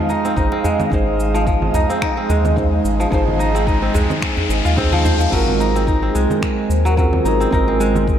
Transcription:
Already playing: F3 G#3 C4 D#4 G#4 C5 D#5 F5
0.09 D#4, djembe tone, cabasa
0.25 C4, cabasa
0.36 G#1 D#4 G#4 C5, kick, cabasa
0.52 C4, djembe slap
0.64 G#3, djembe tone, djembe bass, cabasa
0.80 djembe tone, low conga, cabasa
0.90 G#1 D#4 G#4 C5, kick, riser, cabasa
1.20 cabasa
1.34 F3, cabasa
1.47 F3, kick, cabasa
1.62 low conga
1.74 C2 D#4, djembe slap, djembe tone, djembe bass, cabasa
1.90 C4, cabasa
2.02 D#4, finger snap, kick, cabasa
2.17 C4
2.29 D#2 G#3, djembe slap, djembe tone, cabasa
2.45 djembe slap, low conga, cabasa
2.56 D#4 G#4 C5, kick, cabasa
2.85 G#1, djembe tone, cabasa
3.00 F3, cabasa
3.10 G#1 F3 D#4 G#4 C5, kick, cabasa
3.28 low conga
3.39 D#4, djembe tone, cabasa
3.55 C4, cabasa
3.67 D#4, kick, cabasa
3.82 C4
3.94 C2 G#3, djembe slap, djembe tone, djembe bass, cabasa
4.10 low conga, cabasa
4.22 finger snap, kick, cabasa
4.37 djembe bass
4.49 G#1, djembe tone, cabasa
4.65 D#2 F4, cabasa
4.76 C4 D#4 G#4 C5, kick, cabasa
4.92 F3, djembe slap, low conga
5.05 C5, djembe tone, djembe bass, cabasa
5.20 F3, djembe slap, djembe tone, cabasa
5.30 G#1 F#3 G#3 C4 F4, kick, crash, cabasa
5.34 A#4
5.48 low conga
5.60 D#4 C5, cabasa
5.75 C4, cabasa
5.87 D#4, kick, cabasa
5.92 A#4
6.02 C4
6.15 C2 G#3, cabasa
6.30 low conga, cabasa
6.42 finger snap, kick, cabasa
6.70 D#2, cabasa
6.85 F#3, cabasa
6.97 F#3 C4 F4 A#4, kick, cabasa
7.13 low conga
7.25 G#1 D#4, cabasa
7.40 C4, cabasa
7.50 G#1 C4 D#4 F4 A#4, kick, cabasa
7.68 C4
7.80 G#3, cabasa
7.95 low conga, cabasa
8.08 kick, cabasa

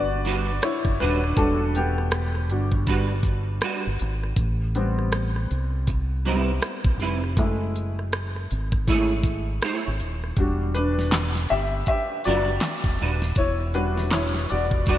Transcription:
Already playing: G1 G3 B3 D4 F#4 G4 B4 D5
0.25 G3 D4 F#4 B4, closed hi-hat
0.62 E4 C#5, cross-stick, closed hi-hat
0.85 F#1, kick
1.00 D#1 G3 D4 F#4 B4, closed hi-hat
1.24 cross-stick
1.37 E1 G3 D4 F#4 A4, kick, closed hi-hat
1.75 B3 G4, closed hi-hat
1.98 cross-stick
2.11 cross-stick, closed hi-hat
2.35 cross-stick
2.50 G1 G3 D4 F#4, closed hi-hat
2.72 kick
2.87 G3 D4 F#4 B4, kick, closed hi-hat
3.23 kick, closed hi-hat
3.61 G3 D4 F#4 B4, cross-stick, closed hi-hat
3.87 G1
3.99 G#1, closed hi-hat
4.24 cross-stick
4.36 A1, kick, closed hi-hat
4.75 G3 B3 C4, closed hi-hat
4.99 cross-stick
5.12 cross-stick, closed hi-hat
5.36 cross-stick
5.51 C2, closed hi-hat
5.87 muted hollow-body jazz guitar stroke, kick, closed hi-hat
6.25 G3 B3 C4 E4 B4, closed hi-hat
6.62 cross-stick, closed hi-hat
6.85 B1, kick
7.00 F1 G3 C4 E4 B4, closed hi-hat
7.24 cross-stick
7.37 F#1 G#3 A3 E4, kick, closed hi-hat
7.76 closed hi-hat
7.99 cross-stick
8.13 cross-stick, closed hi-hat
8.36 cross-stick
8.51 G#1, closed hi-hat
8.72 kick, cross-stick
8.87 G#3 A3 E4 G#4 C#5, kick, closed hi-hat
9.24 kick, closed hi-hat
9.62 A3 E4 G#4 C#5, cross-stick, closed hi-hat
9.88 G#1
10.00 D#1, closed hi-hat
10.24 cross-stick
10.37 E1 G3 D4 F#4, kick, closed hi-hat
10.75 D4 B4, closed hi-hat
10.99 snare
11.11 snare, clap, closed hi-hat
11.35 snare
11.49 G1 G4 E5, closed hi-hat
11.86 G4 E5, muted hollow-body jazz guitar stroke, kick, closed hi-hat
12.24 F#1 G3 D4 F#4 B4 D5, closed hi-hat
12.60 snare, clap, closed hi-hat
12.84 E1, kick
12.99 D#1 G3 D4 F#4 B4, closed hi-hat
13.22 snare
13.35 E1 E4 C#5, kick, closed hi-hat
13.74 G3 D4 F#4 B4, closed hi-hat
13.97 snare
14.11 E4 C#5, snare, clap, closed hi-hat
14.35 snare
14.49 E1 F#4 D5, closed hi-hat
14.71 kick
14.86 G3 D4 F#4 B4 D5, kick, closed hi-hat

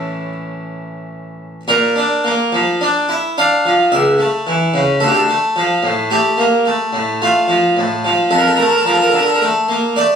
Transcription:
Already playing: A2 E3 C#4 E4 A4
1.68 A#2 A#4
1.96 D4
2.24 A#3
2.52 F3
2.81 D4
3.09 E4
3.38 D4 F5
3.65 F3
3.92 C#2 E5
4.18 A3
4.47 E3
4.74 C#3
5.00 D2 A4
5.08 G4
5.14 A4
5.28 A3
5.56 F3
5.83 A2
6.11 A3 G4
6.38 A#3
6.66 A3
6.93 A2
7.22 A3 F4
7.48 F3
7.77 A2
8.05 F3
8.31 F2 A4
8.38 A#4
8.47 A4
8.56 A3 A#4
8.62 A4
8.69 A#4
8.77 A4
8.85 F3 A#4
8.94 A4
9.02 A#4
9.09 D3 A4
9.18 A#4
9.26 A4
9.34 A#4
9.41 A3 A4
9.68 A#3
9.96 A3 D5

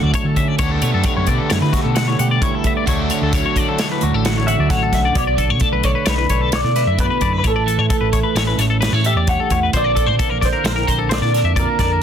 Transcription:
Already playing: D2 A2 D3 F#3 A3 D4 F#4
0.03 D2 D5
0.13 D2 A4 C#5, kick, closed hi-hat
0.24 D3 A4
0.36 C#4 E5, kick, closed hi-hat
0.48 D5
0.58 D2 D3 G3 B3 C#5, kick, closed hi-hat
0.63 D4
0.71 A4
0.82 B2 A3 C#5, closed hi-hat
0.94 F#2 A4
1.04 C#5, kick, closed hi-hat
1.17 F#2 C#5
1.27 B2 D3 D5, kick, closed hi-hat
1.38 A4
1.50 F#2 A3 C#5, snare, closed hi-hat
1.61 D3 B4
1.73 D2 F#4, kick, snare, closed hi-hat
1.84 B2 A4
1.95 F#5, snare, closed hi-hat
2.08 C#5
2.19 B2 G4 F#5, closed hi-hat
2.31 D5
2.41 D2 E4 C#5, kick, closed hi-hat
2.55 A4
2.64 A3 E5, kick, closed hi-hat
2.77 D5
2.86 D2 D3 F#3 A3 D4 F#4 C#5, kick, closed hi-hat
2.99 A4
3.10 C#5, closed hi-hat
3.21 D2 A4
3.33 F#3 C#5, kick, closed hi-hat
3.46 C#5
3.55 D3 D5, kick, closed hi-hat
3.68 A4
3.79 C#5, snare, closed hi-hat
3.92 B4
4.01 D2 A2 F#4, closed hi-hat
4.13 A1 A4
4.25 F#3 F#5, snare, closed hi-hat
4.37 C#5
4.47 F#4 E5 F#5, closed hi-hat
4.58 D2 D5
4.70 A1 D2 A4 C#5 F#5, kick, snare, closed hi-hat
4.83 A4
4.92 B1 C#4 E5, kick, snare, closed hi-hat
5.05 D5
5.14 B1 B2 C#5 D5, kick, closed hi-hat
5.27 D5
5.37 D3 A4, kick, closed hi-hat
5.50 B2 C#5
5.60 A3 A4, kick, closed hi-hat
5.72 B1 B4
5.83 D3 C#5 D5, kick, closed hi-hat
5.95 B4
6.05 B1 D4 B4 C#5, snare, closed hi-hat
6.18 B4
6.29 B1 D3 C#5, kick, closed hi-hat
6.41 A4
6.52 A3 C#5 D5, snare, closed hi-hat
6.64 B2 D5
6.76 E4 B4, snare, closed hi-hat
6.87 F#2 E5
6.98 B2 B4 D5, kick, closed hi-hat
7.10 B4
7.21 F#2 D3 D5, kick, closed hi-hat
7.33 B4
7.38 B4
7.44 A1 A2 A4 C#5, kick, closed hi-hat
7.56 D5
7.66 E3 A4, closed hi-hat
7.78 A2 C#5
7.90 A3 A4, kick, closed hi-hat
8.01 A1 B4
8.12 E3 C#5, kick, closed hi-hat
8.23 B4
8.35 A1 C#4 C#5, snare, closed hi-hat
8.47 B4
8.58 A1 E3 C#5, snare, closed hi-hat
8.70 A4
8.81 F#3 B4, snare, closed hi-hat
8.92 A2 A3 C#5
9.04 G4 A4 E5, closed hi-hat
9.15 E2 D5
9.27 G2 C#5 F#5, kick, closed hi-hat
9.40 A4
9.50 E2 A2 C#5, kick, closed hi-hat
9.63 B4
9.73 A#1 A#2 D3 A#3 C4 C5 D5, kick, closed hi-hat
9.77 D4
9.84 D5
9.95 D3 A4, kick, closed hi-hat
10.06 A#2 C5
10.19 A#3 A4, kick, closed hi-hat
10.30 A#1 A#4
10.41 D3 C5 D5, kick, snare, closed hi-hat
10.53 A#4
10.64 A#1 C4 A#4 C5, snare, closed hi-hat
10.76 A#4
10.87 A#1 D3 C5, kick, closed hi-hat
10.99 A4
11.09 A#3 C5, snare, closed hi-hat
11.13 D5
11.21 A#2 D5
11.34 D4 A#4, snare, closed hi-hat
11.43 F2 E5
11.56 A#2 A#4 D5, kick, closed hi-hat
11.68 A#4
11.79 F2 D3 D5, kick, snare, closed hi-hat
11.92 A#4

